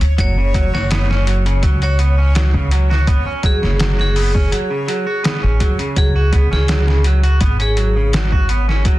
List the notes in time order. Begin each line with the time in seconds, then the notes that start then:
Already playing: C#5
0.01 D2, closed hi-hat
0.18 F#1 F#3 C#5, kick, closed hi-hat
0.37 C#3
0.54 F#3, kick, closed hi-hat
0.74 F#1 F#4 C#5, snare
0.91 B3, snare, closed hi-hat
1.10 C#4, snare
1.27 F#3, closed hi-hat
1.46 C#3, closed hi-hat
1.63 C#2 F#3, kick, closed hi-hat
1.82 F#4 C#5, closed hi-hat
1.99 B3, closed hi-hat
2.18 C#4
2.35 F#3, snare, closed hi-hat
2.54 C#3, kick
2.71 F#3, closed hi-hat
2.90 F#4, snare
3.07 B3, kick, closed hi-hat
3.26 C#4
3.43 F#3 G#4, kick, closed hi-hat
3.62 F#1 C#3, snare
3.80 F#3, snare, closed hi-hat
3.99 F#4 G#4, snare
4.16 B3, open hi-hat
4.34 C#4, kick
4.52 F#3, closed hi-hat
4.70 C#3
4.88 F#3, closed hi-hat
5.07 F#4
5.24 B3, snare, closed hi-hat
5.43 A1 C#4
5.60 F#3, kick, closed hi-hat
5.79 C#3, closed hi-hat
5.96 C#2 F#3 G#4, kick, closed hi-hat
6.16 F#4
6.32 B3, kick, closed hi-hat
6.51 C#2 C#4 G#4, snare
6.68 F#3, snare, closed hi-hat
6.87 C#3, snare
7.04 F#3, closed hi-hat
7.23 F#4, closed hi-hat
7.41 G#1 B3, kick, closed hi-hat
7.60 C#4 G#4, closed hi-hat
7.77 F#3, closed hi-hat
7.96 C#3
8.13 F#3, snare, closed hi-hat
8.32 F#4, kick
8.49 B3, closed hi-hat
8.69 C#4, snare
8.85 F#3, kick, closed hi-hat